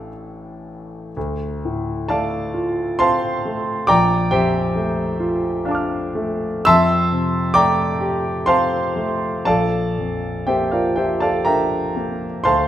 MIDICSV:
0, 0, Header, 1, 2, 480
1, 0, Start_track
1, 0, Tempo, 1038062
1, 535, Time_signature, 3, 2, 24, 8
1, 536, Tempo, 943396
1, 1016, Tempo, 884956
1, 2936, Tempo, 1005025
1, 3416, Tempo, 910470
1, 4376, Tempo, 996678
1, 6403, End_track
2, 0, Start_track
2, 0, Title_t, "Grand piano"
2, 0, Program_c, 0, 0
2, 0, Control_c, 0, 64, 127
2, 0, Note_on_c, 0, 33, 51
2, 0, Note_on_c, 0, 45, 55
2, 0, Note_on_c, 0, 52, 42
2, 0, Note_on_c, 0, 57, 41
2, 0, Note_on_c, 0, 62, 37
2, 0, Note_on_c, 0, 67, 40
2, 0, Note_on_c, 0, 81, 86
2, 51, Note_off_c, 0, 81, 0
2, 503, Note_off_c, 0, 45, 0
2, 507, Note_off_c, 0, 52, 0
2, 509, Note_off_c, 0, 57, 0
2, 510, Note_off_c, 0, 62, 0
2, 513, Note_off_c, 0, 33, 0
2, 513, Note_off_c, 0, 67, 0
2, 540, Note_on_c, 0, 38, 50
2, 545, Control_c, 0, 64, 0
2, 627, Control_c, 0, 64, 127
2, 786, Note_on_c, 0, 45, 37
2, 1007, Note_on_c, 0, 81, 72
2, 1013, Note_on_c, 0, 77, 53
2, 1015, Note_on_c, 0, 74, 56
2, 1017, Note_on_c, 0, 69, 51
2, 1019, Note_on_c, 0, 57, 36
2, 1165, Note_off_c, 0, 45, 0
2, 1253, Note_on_c, 0, 65, 38
2, 1407, Note_off_c, 0, 57, 0
2, 1480, Note_off_c, 0, 77, 0
2, 1481, Note_off_c, 0, 74, 0
2, 1482, Note_off_c, 0, 69, 0
2, 1492, Note_off_c, 0, 81, 0
2, 1496, Note_on_c, 0, 84, 89
2, 1500, Note_on_c, 0, 81, 69
2, 1502, Note_on_c, 0, 72, 58
2, 1504, Note_on_c, 0, 77, 62
2, 1505, Note_on_c, 0, 60, 46
2, 1646, Note_off_c, 0, 65, 0
2, 1749, Note_on_c, 0, 57, 43
2, 1891, Note_off_c, 0, 60, 0
2, 1962, Note_off_c, 0, 72, 0
2, 1962, Note_off_c, 0, 81, 0
2, 1963, Note_off_c, 0, 77, 0
2, 1965, Note_off_c, 0, 38, 0
2, 1976, Note_on_c, 0, 86, 88
2, 1981, Note_off_c, 0, 84, 0
2, 1981, Note_on_c, 0, 79, 79
2, 1983, Note_on_c, 0, 74, 71
2, 1983, Note_on_c, 0, 82, 79
2, 1986, Note_off_c, 0, 57, 0
2, 1986, Note_on_c, 0, 34, 58
2, 1993, Control_c, 0, 64, 0
2, 2091, Control_c, 0, 64, 127
2, 2201, Note_off_c, 0, 79, 0
2, 2201, Note_off_c, 0, 82, 0
2, 2202, Note_off_c, 0, 74, 0
2, 2213, Note_on_c, 0, 79, 81
2, 2214, Note_off_c, 0, 86, 0
2, 2216, Note_on_c, 0, 67, 59
2, 2217, Note_on_c, 0, 72, 62
2, 2221, Note_on_c, 0, 41, 40
2, 2221, Note_on_c, 0, 76, 61
2, 2455, Note_on_c, 0, 57, 42
2, 2595, Note_off_c, 0, 41, 0
2, 2696, Note_on_c, 0, 65, 44
2, 2836, Note_off_c, 0, 57, 0
2, 2940, Note_on_c, 0, 77, 41
2, 2942, Note_on_c, 0, 62, 52
2, 2956, Note_on_c, 0, 81, 42
2, 2970, Note_on_c, 0, 86, 38
2, 2986, Note_on_c, 0, 89, 41
2, 3077, Note_off_c, 0, 65, 0
2, 3178, Note_on_c, 0, 57, 46
2, 3324, Note_off_c, 0, 62, 0
2, 3395, Note_off_c, 0, 67, 0
2, 3395, Note_off_c, 0, 72, 0
2, 3396, Note_off_c, 0, 34, 0
2, 3397, Note_off_c, 0, 76, 0
2, 3398, Note_off_c, 0, 77, 0
2, 3406, Note_off_c, 0, 81, 0
2, 3412, Note_off_c, 0, 79, 0
2, 3413, Note_off_c, 0, 86, 0
2, 3418, Note_off_c, 0, 57, 0
2, 3418, Note_on_c, 0, 88, 112
2, 3422, Note_off_c, 0, 89, 0
2, 3424, Control_c, 0, 64, 0
2, 3425, Note_on_c, 0, 76, 92
2, 3425, Note_on_c, 0, 84, 84
2, 3426, Note_on_c, 0, 81, 92
2, 3428, Note_on_c, 0, 41, 66
2, 3514, Control_c, 0, 64, 127
2, 3666, Note_on_c, 0, 48, 39
2, 3873, Note_off_c, 0, 76, 0
2, 3873, Note_off_c, 0, 84, 0
2, 3874, Note_off_c, 0, 81, 0
2, 3886, Note_on_c, 0, 86, 101
2, 3890, Note_off_c, 0, 88, 0
2, 3891, Note_on_c, 0, 79, 70
2, 3891, Note_on_c, 0, 82, 66
2, 3892, Note_on_c, 0, 74, 67
2, 3893, Note_on_c, 0, 57, 45
2, 4034, Note_off_c, 0, 48, 0
2, 4132, Note_on_c, 0, 67, 47
2, 4276, Note_off_c, 0, 57, 0
2, 4355, Note_off_c, 0, 74, 0
2, 4355, Note_off_c, 0, 79, 0
2, 4355, Note_off_c, 0, 82, 0
2, 4372, Note_on_c, 0, 84, 92
2, 4373, Note_off_c, 0, 86, 0
2, 4378, Note_on_c, 0, 72, 68
2, 4378, Note_on_c, 0, 81, 66
2, 4379, Note_on_c, 0, 77, 72
2, 4380, Note_on_c, 0, 60, 46
2, 4519, Note_off_c, 0, 67, 0
2, 4612, Note_on_c, 0, 57, 43
2, 4762, Note_off_c, 0, 60, 0
2, 4840, Note_off_c, 0, 72, 0
2, 4841, Note_off_c, 0, 77, 0
2, 4841, Note_off_c, 0, 81, 0
2, 4845, Note_off_c, 0, 41, 0
2, 4850, Note_on_c, 0, 81, 83
2, 4855, Note_on_c, 0, 77, 56
2, 4856, Note_on_c, 0, 74, 65
2, 4857, Note_off_c, 0, 84, 0
2, 4858, Note_off_c, 0, 57, 0
2, 4858, Note_on_c, 0, 34, 52
2, 4858, Note_on_c, 0, 69, 62
2, 4868, Control_c, 0, 64, 0
2, 4947, Control_c, 0, 64, 127
2, 5105, Note_on_c, 0, 41, 34
2, 5325, Note_off_c, 0, 74, 0
2, 5325, Note_off_c, 0, 77, 0
2, 5327, Note_off_c, 0, 69, 0
2, 5338, Note_on_c, 0, 79, 64
2, 5341, Note_on_c, 0, 58, 31
2, 5341, Note_on_c, 0, 76, 47
2, 5342, Note_off_c, 0, 81, 0
2, 5342, Note_on_c, 0, 67, 49
2, 5343, Note_on_c, 0, 72, 50
2, 5455, Note_off_c, 0, 67, 0
2, 5455, Note_off_c, 0, 76, 0
2, 5456, Note_off_c, 0, 72, 0
2, 5458, Note_on_c, 0, 77, 51
2, 5461, Note_on_c, 0, 70, 47
2, 5462, Note_off_c, 0, 79, 0
2, 5464, Note_on_c, 0, 74, 46
2, 5465, Note_on_c, 0, 65, 39
2, 5491, Note_off_c, 0, 41, 0
2, 5574, Note_off_c, 0, 70, 0
2, 5575, Note_on_c, 0, 79, 58
2, 5576, Note_off_c, 0, 65, 0
2, 5576, Note_off_c, 0, 74, 0
2, 5581, Note_off_c, 0, 77, 0
2, 5581, Note_on_c, 0, 72, 50
2, 5582, Note_on_c, 0, 67, 44
2, 5582, Note_on_c, 0, 76, 46
2, 5584, Note_on_c, 0, 65, 31
2, 5693, Note_off_c, 0, 72, 0
2, 5693, Note_on_c, 0, 81, 64
2, 5694, Note_off_c, 0, 67, 0
2, 5694, Note_off_c, 0, 76, 0
2, 5699, Note_off_c, 0, 79, 0
2, 5700, Note_on_c, 0, 69, 48
2, 5700, Note_on_c, 0, 74, 51
2, 5701, Note_on_c, 0, 77, 52
2, 5725, Note_off_c, 0, 58, 0
2, 5810, Note_on_c, 0, 82, 75
2, 5811, Note_off_c, 0, 69, 0
2, 5811, Note_off_c, 0, 74, 0
2, 5812, Note_off_c, 0, 77, 0
2, 5815, Note_on_c, 0, 79, 57
2, 5816, Note_off_c, 0, 81, 0
2, 5816, Note_on_c, 0, 70, 51
2, 5816, Note_on_c, 0, 76, 56
2, 5819, Note_on_c, 0, 62, 38
2, 5962, Note_off_c, 0, 65, 0
2, 6058, Note_on_c, 0, 58, 36
2, 6200, Note_off_c, 0, 62, 0
2, 6275, Note_off_c, 0, 70, 0
2, 6275, Note_off_c, 0, 76, 0
2, 6275, Note_off_c, 0, 79, 0
2, 6278, Note_off_c, 0, 34, 0
2, 6287, Note_on_c, 0, 84, 87
2, 6291, Note_off_c, 0, 82, 0
2, 6292, Note_on_c, 0, 72, 64
2, 6293, Note_on_c, 0, 77, 65
2, 6295, Note_on_c, 0, 38, 53
2, 6295, Note_on_c, 0, 81, 69
2, 6297, Note_off_c, 0, 58, 0
2, 6306, Control_c, 0, 64, 0
2, 6403, Note_off_c, 0, 38, 0
2, 6403, Note_off_c, 0, 72, 0
2, 6403, Note_off_c, 0, 77, 0
2, 6403, Note_off_c, 0, 81, 0
2, 6403, Note_off_c, 0, 84, 0
2, 6403, End_track
0, 0, End_of_file